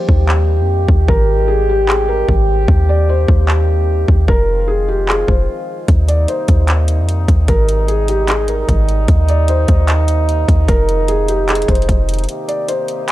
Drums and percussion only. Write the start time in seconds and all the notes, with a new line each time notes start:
0.09 kick
0.29 clap
0.88 kick
1.08 kick
1.89 clap
2.29 kick
2.68 kick
3.28 kick
3.48 clap
4.08 kick
4.28 kick
5.09 clap
5.28 kick
5.88 kick, closed hi-hat
6.08 closed hi-hat
6.28 closed hi-hat
6.48 kick, closed hi-hat
6.68 clap, closed hi-hat
6.88 closed hi-hat
7.09 closed hi-hat
7.28 kick, closed hi-hat
7.48 kick, closed hi-hat
7.69 closed hi-hat
7.88 closed hi-hat
8.08 closed hi-hat
8.28 clap, closed hi-hat
8.48 closed hi-hat
8.69 kick, closed hi-hat
8.89 closed hi-hat
9.08 kick, closed hi-hat
9.29 closed hi-hat
9.48 closed hi-hat
9.68 kick, closed hi-hat
9.88 clap, closed hi-hat
10.08 closed hi-hat
10.29 closed hi-hat
10.48 kick, closed hi-hat
10.68 kick, closed hi-hat
10.89 closed hi-hat
11.08 closed hi-hat
11.28 closed hi-hat
11.49 clap, closed hi-hat
11.55 closed hi-hat
11.62 closed hi-hat
11.68 kick, closed hi-hat
11.75 closed hi-hat
11.82 closed hi-hat
11.89 kick, closed hi-hat
12.09 closed hi-hat
12.14 closed hi-hat
12.19 closed hi-hat
12.24 closed hi-hat
12.29 closed hi-hat
12.49 closed hi-hat
12.68 closed hi-hat
12.88 closed hi-hat
13.08 closed hi-hat